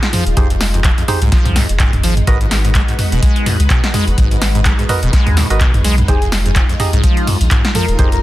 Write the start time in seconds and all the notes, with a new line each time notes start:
Already playing: G#3 D#4 F4
0.03 snare, closed hi-hat
0.13 F3, mid tom, open hi-hat
0.26 D#1, closed hi-hat
0.37 F1 F2 D#4 G4 G#4 C5, kick, closed hi-hat
0.50 F2, closed hi-hat
0.61 snare, open hi-hat
0.74 F2, closed hi-hat
0.84 F3, kick, clap, closed hi-hat
0.98 F2, closed hi-hat
1.08 D#4 G4 G#4 C5, mid tom, open hi-hat
1.22 C2 G#2, closed hi-hat
1.32 F3, kick, snare, closed hi-hat
1.45 C2, closed hi-hat, mid tom
1.56 F2, snare, open hi-hat
1.69 F1, closed hi-hat
1.79 G#2, kick, clap, closed hi-hat
1.93 F1, closed hi-hat, mid tom
2.03 G#1 F3, open hi-hat
2.17 closed hi-hat, mid tom
2.27 G#1 G#2 G#3 F#4 A#4 B4 D#5, kick, closed hi-hat
2.41 G#2, closed hi-hat
2.51 snare, open hi-hat
2.65 G#2, closed hi-hat
2.75 G#3, kick, clap, closed hi-hat
2.88 G#2, closed hi-hat
2.99 mid tom, open hi-hat
3.12 D#1 B2, closed hi-hat
3.22 G#3, kick, closed hi-hat
3.36 closed hi-hat
3.46 G#2, mid tom, open hi-hat
3.60 C#2, closed hi-hat
3.70 B2, kick, clap, closed hi-hat
3.84 snare, closed hi-hat
3.94 G#3, mid tom, open hi-hat
4.08 F#1, closed hi-hat
4.18 G#1 G#2, kick, closed hi-hat
4.31 G#2, closed hi-hat
4.42 snare, open hi-hat
4.55 G#2, closed hi-hat
4.65 G#3, kick, clap, closed hi-hat
4.79 G#2, closed hi-hat
4.89 F#4 A#4 B4 D#5, mid tom, open hi-hat
5.03 D#1 B2, closed hi-hat
5.13 G#3, kick, snare, closed hi-hat
5.27 D#2, closed hi-hat, mid tom
5.37 G#2, snare, open hi-hat
5.50 G#1 F#4 A#4 B4 D#5, closed hi-hat
5.61 B2, kick, clap, closed hi-hat
5.74 G#1, closed hi-hat, mid tom
5.84 B1 G#3, open hi-hat
5.98 closed hi-hat, mid tom
6.08 F1 F2 D#4 F4 G4 G#4 C5, kick, closed hi-hat
6.22 F2, closed hi-hat
6.32 snare, open hi-hat
6.46 F2, closed hi-hat
6.56 F3, kick, clap, closed hi-hat
6.69 F2, closed hi-hat
6.80 D#4 G4 G#4 D#5, mid tom, open hi-hat
6.93 C2 G#2, closed hi-hat
7.04 F3, kick, closed hi-hat
7.17 closed hi-hat
7.27 F2, mid tom, open hi-hat
7.41 A#1, closed hi-hat
7.51 G#2, kick, clap, closed hi-hat
7.65 snare, closed hi-hat
7.75 F3 A#4, mid tom, open hi-hat
7.88 D#1, closed hi-hat
7.99 F1 F2 D#4 G4 G#4 A#4 C5, kick, closed hi-hat
8.12 F2 A#4, closed hi-hat